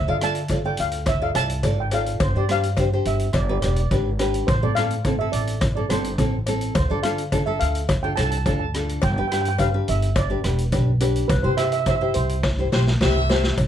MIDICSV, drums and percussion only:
0, 0, Header, 1, 2, 480
1, 0, Start_track
1, 0, Key_signature, 0, "major"
1, 0, Tempo, 568720
1, 1860, Time_signature, 4, 2, 24, 8
1, 11543, End_track
2, 0, Start_track
2, 0, Title_t, "Drums"
2, 179, Note_on_c, 9, 37, 92
2, 179, Note_on_c, 9, 42, 90
2, 263, Note_off_c, 9, 37, 0
2, 263, Note_off_c, 9, 42, 0
2, 293, Note_on_c, 9, 42, 67
2, 378, Note_off_c, 9, 42, 0
2, 407, Note_on_c, 9, 42, 67
2, 418, Note_on_c, 9, 36, 86
2, 426, Note_on_c, 9, 56, 69
2, 491, Note_off_c, 9, 42, 0
2, 503, Note_off_c, 9, 36, 0
2, 510, Note_off_c, 9, 56, 0
2, 651, Note_on_c, 9, 42, 90
2, 735, Note_off_c, 9, 42, 0
2, 773, Note_on_c, 9, 42, 64
2, 857, Note_off_c, 9, 42, 0
2, 893, Note_on_c, 9, 37, 81
2, 893, Note_on_c, 9, 42, 63
2, 899, Note_on_c, 9, 36, 113
2, 900, Note_on_c, 9, 56, 97
2, 977, Note_off_c, 9, 37, 0
2, 977, Note_off_c, 9, 42, 0
2, 983, Note_off_c, 9, 36, 0
2, 985, Note_off_c, 9, 56, 0
2, 1139, Note_on_c, 9, 37, 88
2, 1139, Note_on_c, 9, 42, 92
2, 1139, Note_on_c, 9, 56, 70
2, 1223, Note_off_c, 9, 37, 0
2, 1223, Note_off_c, 9, 42, 0
2, 1224, Note_off_c, 9, 56, 0
2, 1262, Note_on_c, 9, 42, 69
2, 1347, Note_off_c, 9, 42, 0
2, 1376, Note_on_c, 9, 42, 64
2, 1378, Note_on_c, 9, 56, 76
2, 1380, Note_on_c, 9, 36, 80
2, 1461, Note_off_c, 9, 42, 0
2, 1462, Note_off_c, 9, 56, 0
2, 1464, Note_off_c, 9, 36, 0
2, 1614, Note_on_c, 9, 42, 86
2, 1618, Note_on_c, 9, 56, 76
2, 1698, Note_off_c, 9, 42, 0
2, 1702, Note_off_c, 9, 56, 0
2, 1741, Note_on_c, 9, 42, 59
2, 1825, Note_off_c, 9, 42, 0
2, 1856, Note_on_c, 9, 42, 63
2, 1857, Note_on_c, 9, 56, 103
2, 1859, Note_on_c, 9, 36, 120
2, 1940, Note_off_c, 9, 42, 0
2, 1942, Note_off_c, 9, 56, 0
2, 1944, Note_off_c, 9, 36, 0
2, 2100, Note_on_c, 9, 37, 92
2, 2100, Note_on_c, 9, 42, 83
2, 2184, Note_off_c, 9, 37, 0
2, 2184, Note_off_c, 9, 42, 0
2, 2223, Note_on_c, 9, 42, 61
2, 2307, Note_off_c, 9, 42, 0
2, 2335, Note_on_c, 9, 56, 73
2, 2340, Note_on_c, 9, 36, 88
2, 2340, Note_on_c, 9, 42, 58
2, 2419, Note_off_c, 9, 56, 0
2, 2424, Note_off_c, 9, 36, 0
2, 2424, Note_off_c, 9, 42, 0
2, 2577, Note_on_c, 9, 42, 85
2, 2661, Note_off_c, 9, 42, 0
2, 2696, Note_on_c, 9, 42, 56
2, 2780, Note_off_c, 9, 42, 0
2, 2810, Note_on_c, 9, 37, 79
2, 2810, Note_on_c, 9, 42, 57
2, 2818, Note_on_c, 9, 36, 103
2, 2821, Note_on_c, 9, 56, 97
2, 2895, Note_off_c, 9, 37, 0
2, 2895, Note_off_c, 9, 42, 0
2, 2902, Note_off_c, 9, 36, 0
2, 2905, Note_off_c, 9, 56, 0
2, 3056, Note_on_c, 9, 37, 90
2, 3056, Note_on_c, 9, 42, 82
2, 3060, Note_on_c, 9, 56, 67
2, 3140, Note_off_c, 9, 37, 0
2, 3140, Note_off_c, 9, 42, 0
2, 3145, Note_off_c, 9, 56, 0
2, 3175, Note_on_c, 9, 42, 66
2, 3259, Note_off_c, 9, 42, 0
2, 3300, Note_on_c, 9, 42, 59
2, 3301, Note_on_c, 9, 36, 88
2, 3303, Note_on_c, 9, 56, 67
2, 3384, Note_off_c, 9, 42, 0
2, 3385, Note_off_c, 9, 36, 0
2, 3387, Note_off_c, 9, 56, 0
2, 3538, Note_on_c, 9, 37, 81
2, 3538, Note_on_c, 9, 42, 85
2, 3540, Note_on_c, 9, 56, 61
2, 3622, Note_off_c, 9, 37, 0
2, 3622, Note_off_c, 9, 42, 0
2, 3625, Note_off_c, 9, 56, 0
2, 3663, Note_on_c, 9, 42, 64
2, 3747, Note_off_c, 9, 42, 0
2, 3781, Note_on_c, 9, 36, 119
2, 3783, Note_on_c, 9, 56, 79
2, 3784, Note_on_c, 9, 42, 63
2, 3866, Note_off_c, 9, 36, 0
2, 3867, Note_off_c, 9, 56, 0
2, 3868, Note_off_c, 9, 42, 0
2, 4020, Note_on_c, 9, 37, 88
2, 4020, Note_on_c, 9, 42, 87
2, 4105, Note_off_c, 9, 37, 0
2, 4105, Note_off_c, 9, 42, 0
2, 4140, Note_on_c, 9, 42, 61
2, 4224, Note_off_c, 9, 42, 0
2, 4258, Note_on_c, 9, 42, 62
2, 4260, Note_on_c, 9, 36, 87
2, 4264, Note_on_c, 9, 56, 61
2, 4342, Note_off_c, 9, 42, 0
2, 4344, Note_off_c, 9, 36, 0
2, 4348, Note_off_c, 9, 56, 0
2, 4497, Note_on_c, 9, 42, 90
2, 4581, Note_off_c, 9, 42, 0
2, 4620, Note_on_c, 9, 42, 67
2, 4704, Note_off_c, 9, 42, 0
2, 4734, Note_on_c, 9, 37, 83
2, 4734, Note_on_c, 9, 42, 62
2, 4737, Note_on_c, 9, 56, 81
2, 4740, Note_on_c, 9, 36, 112
2, 4818, Note_off_c, 9, 37, 0
2, 4818, Note_off_c, 9, 42, 0
2, 4822, Note_off_c, 9, 56, 0
2, 4824, Note_off_c, 9, 36, 0
2, 4979, Note_on_c, 9, 37, 87
2, 4979, Note_on_c, 9, 42, 88
2, 4980, Note_on_c, 9, 56, 59
2, 5063, Note_off_c, 9, 37, 0
2, 5063, Note_off_c, 9, 42, 0
2, 5064, Note_off_c, 9, 56, 0
2, 5101, Note_on_c, 9, 42, 65
2, 5186, Note_off_c, 9, 42, 0
2, 5219, Note_on_c, 9, 36, 87
2, 5219, Note_on_c, 9, 42, 66
2, 5220, Note_on_c, 9, 56, 65
2, 5303, Note_off_c, 9, 36, 0
2, 5303, Note_off_c, 9, 42, 0
2, 5305, Note_off_c, 9, 56, 0
2, 5457, Note_on_c, 9, 42, 93
2, 5457, Note_on_c, 9, 56, 66
2, 5541, Note_off_c, 9, 42, 0
2, 5541, Note_off_c, 9, 56, 0
2, 5578, Note_on_c, 9, 42, 64
2, 5662, Note_off_c, 9, 42, 0
2, 5697, Note_on_c, 9, 56, 89
2, 5698, Note_on_c, 9, 42, 69
2, 5700, Note_on_c, 9, 36, 121
2, 5781, Note_off_c, 9, 56, 0
2, 5782, Note_off_c, 9, 42, 0
2, 5784, Note_off_c, 9, 36, 0
2, 5936, Note_on_c, 9, 37, 91
2, 5936, Note_on_c, 9, 42, 87
2, 6020, Note_off_c, 9, 37, 0
2, 6020, Note_off_c, 9, 42, 0
2, 6061, Note_on_c, 9, 42, 62
2, 6145, Note_off_c, 9, 42, 0
2, 6179, Note_on_c, 9, 56, 72
2, 6180, Note_on_c, 9, 36, 82
2, 6181, Note_on_c, 9, 42, 62
2, 6264, Note_off_c, 9, 56, 0
2, 6265, Note_off_c, 9, 36, 0
2, 6265, Note_off_c, 9, 42, 0
2, 6418, Note_on_c, 9, 42, 84
2, 6503, Note_off_c, 9, 42, 0
2, 6539, Note_on_c, 9, 42, 59
2, 6624, Note_off_c, 9, 42, 0
2, 6657, Note_on_c, 9, 56, 95
2, 6659, Note_on_c, 9, 36, 110
2, 6659, Note_on_c, 9, 37, 80
2, 6659, Note_on_c, 9, 42, 61
2, 6742, Note_off_c, 9, 56, 0
2, 6743, Note_off_c, 9, 36, 0
2, 6744, Note_off_c, 9, 37, 0
2, 6744, Note_off_c, 9, 42, 0
2, 6896, Note_on_c, 9, 37, 92
2, 6896, Note_on_c, 9, 42, 82
2, 6897, Note_on_c, 9, 56, 71
2, 6981, Note_off_c, 9, 37, 0
2, 6981, Note_off_c, 9, 42, 0
2, 6981, Note_off_c, 9, 56, 0
2, 7018, Note_on_c, 9, 42, 63
2, 7103, Note_off_c, 9, 42, 0
2, 7137, Note_on_c, 9, 42, 58
2, 7139, Note_on_c, 9, 36, 87
2, 7139, Note_on_c, 9, 56, 72
2, 7221, Note_off_c, 9, 42, 0
2, 7223, Note_off_c, 9, 36, 0
2, 7223, Note_off_c, 9, 56, 0
2, 7379, Note_on_c, 9, 37, 83
2, 7379, Note_on_c, 9, 42, 86
2, 7464, Note_off_c, 9, 37, 0
2, 7464, Note_off_c, 9, 42, 0
2, 7506, Note_on_c, 9, 42, 58
2, 7590, Note_off_c, 9, 42, 0
2, 7610, Note_on_c, 9, 56, 92
2, 7619, Note_on_c, 9, 36, 117
2, 7620, Note_on_c, 9, 42, 66
2, 7694, Note_off_c, 9, 56, 0
2, 7703, Note_off_c, 9, 36, 0
2, 7704, Note_off_c, 9, 42, 0
2, 7863, Note_on_c, 9, 37, 92
2, 7863, Note_on_c, 9, 42, 88
2, 7948, Note_off_c, 9, 37, 0
2, 7948, Note_off_c, 9, 42, 0
2, 7977, Note_on_c, 9, 42, 67
2, 8062, Note_off_c, 9, 42, 0
2, 8089, Note_on_c, 9, 56, 80
2, 8096, Note_on_c, 9, 36, 85
2, 8096, Note_on_c, 9, 42, 65
2, 8174, Note_off_c, 9, 56, 0
2, 8180, Note_off_c, 9, 36, 0
2, 8180, Note_off_c, 9, 42, 0
2, 8338, Note_on_c, 9, 42, 88
2, 8422, Note_off_c, 9, 42, 0
2, 8459, Note_on_c, 9, 42, 63
2, 8543, Note_off_c, 9, 42, 0
2, 8572, Note_on_c, 9, 37, 78
2, 8572, Note_on_c, 9, 42, 67
2, 8574, Note_on_c, 9, 36, 107
2, 8574, Note_on_c, 9, 56, 100
2, 8656, Note_off_c, 9, 37, 0
2, 8656, Note_off_c, 9, 42, 0
2, 8658, Note_off_c, 9, 36, 0
2, 8658, Note_off_c, 9, 56, 0
2, 8811, Note_on_c, 9, 37, 90
2, 8811, Note_on_c, 9, 42, 91
2, 8895, Note_off_c, 9, 37, 0
2, 8895, Note_off_c, 9, 42, 0
2, 8934, Note_on_c, 9, 42, 69
2, 9018, Note_off_c, 9, 42, 0
2, 9048, Note_on_c, 9, 42, 68
2, 9052, Note_on_c, 9, 36, 85
2, 9054, Note_on_c, 9, 56, 83
2, 9133, Note_off_c, 9, 42, 0
2, 9136, Note_off_c, 9, 36, 0
2, 9138, Note_off_c, 9, 56, 0
2, 9288, Note_on_c, 9, 42, 96
2, 9296, Note_on_c, 9, 56, 82
2, 9372, Note_off_c, 9, 42, 0
2, 9380, Note_off_c, 9, 56, 0
2, 9416, Note_on_c, 9, 42, 63
2, 9500, Note_off_c, 9, 42, 0
2, 9533, Note_on_c, 9, 36, 118
2, 9533, Note_on_c, 9, 42, 69
2, 9535, Note_on_c, 9, 56, 99
2, 9617, Note_off_c, 9, 36, 0
2, 9617, Note_off_c, 9, 42, 0
2, 9620, Note_off_c, 9, 56, 0
2, 9769, Note_on_c, 9, 37, 84
2, 9769, Note_on_c, 9, 42, 91
2, 9853, Note_off_c, 9, 37, 0
2, 9853, Note_off_c, 9, 42, 0
2, 9890, Note_on_c, 9, 42, 66
2, 9974, Note_off_c, 9, 42, 0
2, 10008, Note_on_c, 9, 42, 66
2, 10012, Note_on_c, 9, 36, 89
2, 10018, Note_on_c, 9, 56, 78
2, 10092, Note_off_c, 9, 42, 0
2, 10097, Note_off_c, 9, 36, 0
2, 10103, Note_off_c, 9, 56, 0
2, 10245, Note_on_c, 9, 42, 84
2, 10330, Note_off_c, 9, 42, 0
2, 10376, Note_on_c, 9, 42, 62
2, 10460, Note_off_c, 9, 42, 0
2, 10491, Note_on_c, 9, 38, 63
2, 10494, Note_on_c, 9, 36, 110
2, 10497, Note_on_c, 9, 56, 107
2, 10575, Note_off_c, 9, 38, 0
2, 10579, Note_off_c, 9, 36, 0
2, 10581, Note_off_c, 9, 56, 0
2, 10735, Note_on_c, 9, 38, 78
2, 10741, Note_on_c, 9, 56, 75
2, 10820, Note_off_c, 9, 38, 0
2, 10825, Note_off_c, 9, 56, 0
2, 10863, Note_on_c, 9, 38, 75
2, 10948, Note_off_c, 9, 38, 0
2, 10979, Note_on_c, 9, 36, 84
2, 10981, Note_on_c, 9, 38, 90
2, 10981, Note_on_c, 9, 56, 76
2, 11063, Note_off_c, 9, 36, 0
2, 11065, Note_off_c, 9, 56, 0
2, 11066, Note_off_c, 9, 38, 0
2, 11221, Note_on_c, 9, 56, 73
2, 11224, Note_on_c, 9, 38, 98
2, 11306, Note_off_c, 9, 56, 0
2, 11308, Note_off_c, 9, 38, 0
2, 11338, Note_on_c, 9, 38, 91
2, 11422, Note_off_c, 9, 38, 0
2, 11457, Note_on_c, 9, 42, 58
2, 11458, Note_on_c, 9, 36, 99
2, 11460, Note_on_c, 9, 56, 77
2, 11542, Note_off_c, 9, 42, 0
2, 11543, Note_off_c, 9, 36, 0
2, 11543, Note_off_c, 9, 56, 0
2, 11543, End_track
0, 0, End_of_file